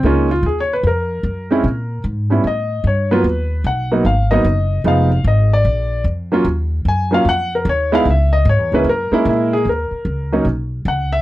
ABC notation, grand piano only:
X:1
M:4/4
L:1/8
Q:"Swing" 1/4=150
K:Cblyd
V:1 name="Grand piano"
D F (3A d c B4- | B2 z2 e2 d =B- | =B2 g2 f e3 | f2 e =d3 z2 |
z2 a f g B d f | _f e d c B D _F A | ^A4 z2 ^f _f |]
V:2 name="Grand piano"
[A,B,EF] z6 [A,=CD_F] | z3 [=G,CD_F] z3 [_G,B,=B,=F] | z3 [G,B,CE] z [G,B,CE] z2 | [F,A,CE] z6 [G,B,DF] |
z3 [G,B,DF] z3 [A,CE_F] | z3 [A,B,D_F] z [A,B,F]3 | z3 [^F,^A,^C^D] z4 |]